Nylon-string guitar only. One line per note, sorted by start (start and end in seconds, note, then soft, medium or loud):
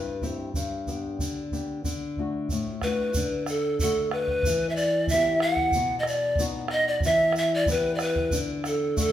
0.00 0.54 G2 medium
0.00 0.10 C4 soft
0.00 0.11 E4 soft
0.00 0.10 G4 soft
0.22 0.48 C4 soft
0.22 0.48 E4 soft
0.22 0.49 G4 medium
0.56 1.18 G2 medium
0.88 1.40 B3 soft
0.88 1.40 D4 soft
0.88 1.40 G4 soft
1.20 1.83 D3 medium
1.53 1.79 B3 soft
1.53 1.79 D4 soft
1.53 1.79 G4 medium
1.85 2.48 D3 medium
2.18 2.70 A3 soft
2.18 2.70 D4 soft
2.18 2.71 F#4 soft
2.52 3.14 A2 medium
2.85 3.09 A3 soft
2.85 3.10 D4 soft
2.85 3.10 F#4 soft
3.17 4.41 D3 medium
3.82 4.44 A3 soft
3.82 4.44 D4 soft
3.82 4.44 F#4 medium
4.46 5.71 E3 medium
5.12 5.73 B3 medium
5.12 5.73 E4 soft
5.12 5.74 G4 medium
5.75 7.00 B2 medium
6.39 7.01 B3 medium
6.39 7.01 D#4 soft
6.39 7.02 F#4 medium
7.06 8.30 E3 medium
7.68 8.30 B3 medium
7.68 8.30 E4 medium
7.68 8.31 G4 medium
8.33 9.12 D3 medium
8.97 9.12 A3 medium
8.97 9.12 D4 soft
8.97 9.12 F#4 medium